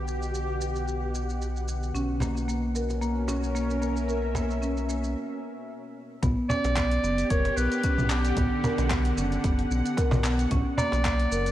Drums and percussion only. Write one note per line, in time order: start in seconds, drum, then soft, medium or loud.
0.08 shaker medium
0.23 shaker soft
0.35 shaker soft
0.61 shaker medium
0.76 shaker soft
0.88 shaker soft
1.15 shaker medium
1.30 shaker soft
1.42 shaker soft
1.56 shaker soft
1.68 shaker medium
1.83 shaker soft
1.95 shaker soft
2.20 cajon bass medium
2.20 cajon slap medium
2.20 shaker medium
2.37 shaker soft
2.49 shaker soft
2.75 shaker medium
2.90 cajon slap soft
2.90 shaker soft
3.02 shaker soft
3.28 cajon slap medium
3.28 shaker medium
3.44 shaker soft
3.56 shaker soft
3.71 shaker soft
3.82 shaker medium
3.97 shaker soft
4.09 shaker soft
4.35 cajon bass medium
4.35 cajon slap medium
4.35 shaker medium
4.51 shaker soft
4.63 shaker soft
4.77 shaker soft
4.89 shaker medium
5.04 shaker soft
6.23 kick loud
6.23 closed hi-hat medium
6.23 mid tom medium
6.23 shaker soft
6.50 cajon bass medium
6.50 shaker medium
6.64 cajon slap medium
6.64 closed hi-hat soft
6.64 shaker soft
6.76 kick loud
6.76 clap medium
6.76 closed hi-hat medium
6.76 shaker soft
6.91 closed hi-hat soft
7.04 shaker medium
7.18 closed hi-hat soft
7.18 shaker soft
7.30 kick loud
7.30 closed hi-hat medium
7.30 shaker soft
7.45 cajon slap medium
7.45 closed hi-hat soft
7.57 shaker medium
7.71 closed hi-hat soft
7.71 shaker soft
7.83 kick loud
7.83 closed hi-hat medium
7.83 shaker soft
7.98 mid tom medium
7.98 shaker soft
8.10 clap medium
8.10 shaker medium
8.25 closed hi-hat soft
8.25 shaker soft
8.37 kick loud
8.37 closed hi-hat medium
8.37 mid tom medium
8.37 shaker soft
8.64 cajon bass medium
8.64 shaker medium
8.78 cajon slap medium
8.78 closed hi-hat soft
8.78 shaker soft
8.91 kick loud
8.91 clap medium
8.91 closed hi-hat medium
8.91 shaker soft
9.05 closed hi-hat soft
9.18 shaker medium
9.32 closed hi-hat soft
9.32 shaker soft
9.44 kick loud
9.44 closed hi-hat medium
9.44 shaker soft
9.59 closed hi-hat soft
9.71 shaker medium
9.85 closed hi-hat soft
9.85 shaker soft
9.97 kick loud
9.97 cajon slap medium
9.97 closed hi-hat medium
9.97 shaker soft
10.11 cajon bass loud
10.11 cajon slap medium
10.11 mid tom medium
10.11 shaker soft
10.24 clap medium
10.24 shaker medium
10.39 closed hi-hat soft
10.39 shaker soft
10.51 kick loud
10.51 closed hi-hat medium
10.51 mid tom medium
10.51 shaker soft
10.78 cajon bass loud
10.78 shaker medium
10.92 cajon slap medium
10.92 closed hi-hat soft
10.92 shaker soft
11.05 kick loud
11.05 clap medium
11.05 closed hi-hat medium
11.05 shaker soft
11.20 closed hi-hat soft
11.32 shaker medium
11.46 closed hi-hat soft
11.46 shaker soft